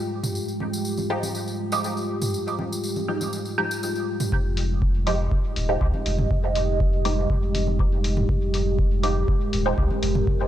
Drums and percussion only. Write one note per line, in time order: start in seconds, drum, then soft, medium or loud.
0.23 mid tom medium
0.23 tambourine medium
0.35 tambourine medium
0.48 tambourine soft
0.60 high conga medium
0.73 tambourine medium
0.85 tambourine medium
0.97 tambourine soft
0.97 high conga soft
1.23 tambourine medium
1.23 high conga soft
1.35 tambourine medium
1.48 tambourine soft
1.72 tambourine medium
1.84 tambourine medium
1.97 tambourine soft
2.22 mid tom medium
2.22 tambourine medium
2.34 tambourine medium
2.48 tambourine soft
2.59 high conga medium
2.72 tambourine medium
2.84 tambourine medium
2.96 tambourine soft
2.96 high conga medium
3.21 tambourine medium
3.21 high conga soft
3.33 tambourine medium
3.45 tambourine soft
3.71 tambourine medium
3.83 tambourine medium
3.95 tambourine soft
4.20 mid tom medium
4.20 tambourine medium
4.32 kick loud
4.57 open hi-hat medium
4.82 kick loud
5.07 open hi-hat medium
5.31 kick loud
5.56 open hi-hat medium
5.81 kick loud
5.94 high conga medium
6.06 open hi-hat medium
6.19 mid tom medium
6.19 high conga medium
6.31 kick loud
6.55 open hi-hat medium
6.80 kick loud
7.05 open hi-hat medium
7.30 kick loud
7.55 open hi-hat medium
7.55 high conga medium
7.67 high conga medium
7.79 kick loud
8.04 open hi-hat medium
8.17 mid tom loud
8.29 kick loud
8.54 open hi-hat medium
8.79 kick loud
9.03 open hi-hat medium
9.28 kick loud
9.53 open hi-hat medium
9.78 kick loud
9.91 high conga medium
10.03 open hi-hat medium
10.15 mid tom loud
10.15 high conga medium
10.27 kick loud